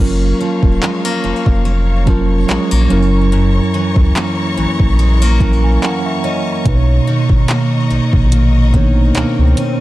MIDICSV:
0, 0, Header, 1, 7, 480
1, 0, Start_track
1, 0, Key_signature, 6, "major"
1, 0, Tempo, 833333
1, 1913, Time_signature, 4, 2, 24, 8
1, 5647, End_track
2, 0, Start_track
2, 0, Title_t, "String section"
2, 0, Program_c, 0, 48
2, 0, Note_on_c, 0, 73, 73
2, 0, Note_on_c, 0, 77, 68
2, 0, Note_on_c, 0, 82, 77
2, 0, Note_on_c, 0, 85, 85
2, 1657, Note_off_c, 0, 77, 0
2, 1671, Note_on_c, 0, 64, 67
2, 3809, Note_off_c, 0, 73, 0
2, 3810, Note_off_c, 0, 64, 0
2, 3832, Note_on_c, 0, 75, 74
2, 5647, Note_off_c, 0, 75, 0
2, 5647, Note_off_c, 0, 82, 0
2, 5647, Note_off_c, 0, 85, 0
2, 5647, End_track
3, 0, Start_track
3, 0, Title_t, "Tine electric piano"
3, 0, Program_c, 1, 4
3, 0, Control_c, 1, 64, 127
3, 0, Note_on_c, 1, 54, 75
3, 0, Note_on_c, 1, 61, 72
3, 0, Note_on_c, 1, 65, 69
3, 1, Control_c, 1, 64, 0
3, 7, Note_on_c, 1, 70, 86
3, 101, Control_c, 1, 64, 127
3, 770, Note_off_c, 1, 54, 0
3, 773, Note_off_c, 1, 61, 0
3, 777, Note_off_c, 1, 65, 0
3, 780, Note_off_c, 1, 70, 0
3, 1185, Note_on_c, 1, 54, 80
3, 1193, Note_on_c, 1, 61, 69
3, 1202, Note_on_c, 1, 65, 72
3, 1207, Note_on_c, 1, 70, 81
3, 1658, Note_off_c, 1, 54, 0
3, 1665, Note_off_c, 1, 61, 0
3, 1665, Note_on_c, 1, 54, 86
3, 1672, Note_on_c, 1, 61, 80
3, 1677, Note_off_c, 1, 65, 0
3, 1680, Note_off_c, 1, 70, 0
3, 1680, Control_c, 1, 64, 0
3, 1681, Note_on_c, 1, 64, 80
3, 1687, Note_on_c, 1, 70, 91
3, 1792, Control_c, 1, 64, 127
3, 2449, Note_off_c, 1, 54, 0
3, 2453, Note_off_c, 1, 61, 0
3, 2457, Note_off_c, 1, 64, 0
3, 2461, Note_off_c, 1, 70, 0
3, 3109, Note_on_c, 1, 54, 81
3, 3116, Note_on_c, 1, 61, 70
3, 3119, Note_on_c, 1, 82, 64
3, 3123, Note_on_c, 1, 64, 73
3, 3130, Note_on_c, 1, 70, 92
3, 3237, Note_off_c, 1, 82, 0
3, 3248, Note_on_c, 1, 80, 73
3, 3348, Note_off_c, 1, 80, 0
3, 3359, Note_on_c, 1, 78, 70
3, 3477, Note_off_c, 1, 78, 0
3, 3488, Note_on_c, 1, 76, 70
3, 3588, Note_off_c, 1, 76, 0
3, 3602, Note_on_c, 1, 75, 72
3, 3701, Note_off_c, 1, 54, 0
3, 3705, Note_off_c, 1, 61, 0
3, 3708, Note_off_c, 1, 64, 0
3, 3712, Note_off_c, 1, 70, 0
3, 3821, Note_off_c, 1, 75, 0
3, 3827, Note_on_c, 1, 47, 80
3, 3837, Note_on_c, 1, 58, 75
3, 3841, Control_c, 1, 64, 0
3, 3843, Note_on_c, 1, 63, 77
3, 3850, Note_on_c, 1, 71, 72
3, 3882, Note_off_c, 1, 71, 0
3, 3888, Note_on_c, 1, 73, 90
3, 3930, Control_c, 1, 64, 127
3, 4611, Note_off_c, 1, 47, 0
3, 4615, Note_off_c, 1, 58, 0
3, 4619, Note_off_c, 1, 63, 0
3, 4641, Note_off_c, 1, 73, 0
3, 5026, Note_on_c, 1, 59, 80
3, 5035, Note_on_c, 1, 58, 71
3, 5042, Note_on_c, 1, 62, 57
3, 5049, Note_on_c, 1, 73, 90
3, 5078, Note_off_c, 1, 62, 0
3, 5079, Note_on_c, 1, 63, 70
3, 5620, Note_off_c, 1, 59, 0
3, 5624, Note_off_c, 1, 58, 0
3, 5631, Note_off_c, 1, 73, 0
3, 5646, Note_off_c, 1, 63, 0
3, 5647, End_track
4, 0, Start_track
4, 0, Title_t, "Steel-string acoustic guitar"
4, 0, Program_c, 2, 25
4, 0, Note_on_c, 2, 58, 57
4, 0, Note_on_c, 2, 61, 62
4, 234, Note_on_c, 2, 53, 58
4, 471, Note_off_c, 2, 58, 0
4, 474, Note_on_c, 2, 56, 60
4, 603, Note_off_c, 2, 56, 0
4, 603, Note_on_c, 2, 58, 50
4, 706, Note_off_c, 2, 53, 0
4, 713, Note_on_c, 2, 53, 58
4, 944, Note_off_c, 2, 58, 0
4, 951, Note_on_c, 2, 58, 58
4, 1184, Note_off_c, 2, 53, 0
4, 1191, Note_on_c, 2, 53, 62
4, 1428, Note_off_c, 2, 58, 0
4, 1431, Note_on_c, 2, 56, 57
4, 1561, Note_off_c, 2, 56, 0
4, 1561, Note_on_c, 2, 58, 50
4, 1672, Note_on_c, 2, 42, 80
4, 1724, Note_off_c, 2, 53, 0
4, 1724, Note_off_c, 2, 58, 0
4, 1900, Note_off_c, 2, 61, 0
4, 1906, Note_off_c, 2, 42, 0
4, 1913, Note_on_c, 2, 42, 80
4, 2155, Note_on_c, 2, 52, 62
4, 2394, Note_on_c, 2, 58, 65
4, 2628, Note_off_c, 2, 52, 0
4, 2635, Note_on_c, 2, 52, 61
4, 2872, Note_off_c, 2, 58, 0
4, 2874, Note_on_c, 2, 56, 64
4, 3005, Note_off_c, 2, 56, 0
4, 3005, Note_on_c, 2, 58, 51
4, 3107, Note_off_c, 2, 52, 0
4, 3114, Note_on_c, 2, 52, 62
4, 3347, Note_off_c, 2, 58, 0
4, 3354, Note_on_c, 2, 58, 58
4, 3594, Note_on_c, 2, 61, 64
4, 3833, Note_off_c, 2, 42, 0
4, 3885, Note_off_c, 2, 52, 0
4, 4075, Note_on_c, 2, 51, 64
4, 4092, Note_off_c, 2, 61, 0
4, 4313, Note_off_c, 2, 58, 0
4, 4315, Note_on_c, 2, 58, 66
4, 4551, Note_off_c, 2, 51, 0
4, 4553, Note_on_c, 2, 51, 59
4, 4792, Note_off_c, 2, 58, 0
4, 4794, Note_on_c, 2, 58, 58
4, 5031, Note_off_c, 2, 51, 0
4, 5033, Note_on_c, 2, 51, 62
4, 5272, Note_off_c, 2, 58, 0
4, 5274, Note_on_c, 2, 58, 59
4, 5515, Note_on_c, 2, 61, 69
4, 5647, Note_off_c, 2, 51, 0
4, 5647, Note_off_c, 2, 58, 0
4, 5647, Note_off_c, 2, 61, 0
4, 5647, End_track
5, 0, Start_track
5, 0, Title_t, "Sub bass"
5, 0, Program_c, 3, 38
5, 0, Note_on_c, 3, 30, 107
5, 192, Note_off_c, 3, 30, 0
5, 362, Note_on_c, 3, 27, 88
5, 454, Note_off_c, 3, 27, 0
5, 715, Note_on_c, 3, 29, 48
5, 767, Note_off_c, 3, 29, 0
5, 844, Note_on_c, 3, 29, 89
5, 1411, Note_off_c, 3, 29, 0
5, 1435, Note_on_c, 3, 34, 49
5, 1487, Note_off_c, 3, 34, 0
5, 1565, Note_on_c, 3, 34, 98
5, 1656, Note_off_c, 3, 34, 0
5, 1676, Note_on_c, 3, 30, 99
5, 2073, Note_off_c, 3, 30, 0
5, 2283, Note_on_c, 3, 37, 89
5, 2375, Note_off_c, 3, 37, 0
5, 2636, Note_on_c, 3, 34, 49
5, 2687, Note_off_c, 3, 34, 0
5, 2764, Note_on_c, 3, 34, 86
5, 3331, Note_off_c, 3, 34, 0
5, 3835, Note_on_c, 3, 35, 102
5, 4033, Note_off_c, 3, 35, 0
5, 4202, Note_on_c, 3, 32, 91
5, 4294, Note_off_c, 3, 32, 0
5, 4555, Note_on_c, 3, 34, 47
5, 4606, Note_off_c, 3, 34, 0
5, 4684, Note_on_c, 3, 34, 92
5, 5250, Note_off_c, 3, 34, 0
5, 5275, Note_on_c, 3, 37, 45
5, 5327, Note_off_c, 3, 37, 0
5, 5405, Note_on_c, 3, 37, 100
5, 5495, Note_off_c, 3, 37, 0
5, 5647, End_track
6, 0, Start_track
6, 0, Title_t, "Swell"
6, 0, Program_c, 4, 103
6, 3833, Note_on_c, 4, 60, 85
6, 5647, Note_off_c, 4, 60, 0
6, 5647, End_track
7, 0, Start_track
7, 0, Title_t, "Drums"
7, 361, Note_on_c, 9, 36, 87
7, 418, Note_off_c, 9, 36, 0
7, 477, Note_on_c, 9, 39, 105
7, 534, Note_off_c, 9, 39, 0
7, 842, Note_on_c, 9, 36, 90
7, 900, Note_off_c, 9, 36, 0
7, 1193, Note_on_c, 9, 36, 92
7, 1250, Note_off_c, 9, 36, 0
7, 1440, Note_on_c, 9, 39, 106
7, 1498, Note_off_c, 9, 39, 0
7, 2282, Note_on_c, 9, 36, 85
7, 2339, Note_off_c, 9, 36, 0
7, 2398, Note_on_c, 9, 39, 108
7, 2455, Note_off_c, 9, 39, 0
7, 2763, Note_on_c, 9, 36, 91
7, 2820, Note_off_c, 9, 36, 0
7, 3112, Note_on_c, 9, 36, 95
7, 3170, Note_off_c, 9, 36, 0
7, 3360, Note_on_c, 9, 39, 107
7, 3418, Note_off_c, 9, 39, 0
7, 3833, Note_on_c, 9, 36, 112
7, 3834, Note_on_c, 9, 42, 62
7, 3891, Note_off_c, 9, 36, 0
7, 3891, Note_off_c, 9, 42, 0
7, 4201, Note_on_c, 9, 36, 89
7, 4259, Note_off_c, 9, 36, 0
7, 4310, Note_on_c, 9, 42, 68
7, 4317, Note_on_c, 9, 39, 107
7, 4367, Note_off_c, 9, 42, 0
7, 4375, Note_off_c, 9, 39, 0
7, 4682, Note_on_c, 9, 36, 98
7, 4740, Note_off_c, 9, 36, 0
7, 4792, Note_on_c, 9, 42, 77
7, 4850, Note_off_c, 9, 42, 0
7, 5032, Note_on_c, 9, 36, 88
7, 5090, Note_off_c, 9, 36, 0
7, 5269, Note_on_c, 9, 42, 67
7, 5278, Note_on_c, 9, 39, 98
7, 5326, Note_off_c, 9, 42, 0
7, 5335, Note_off_c, 9, 39, 0
7, 5513, Note_on_c, 9, 42, 63
7, 5570, Note_off_c, 9, 42, 0
7, 5647, End_track
0, 0, End_of_file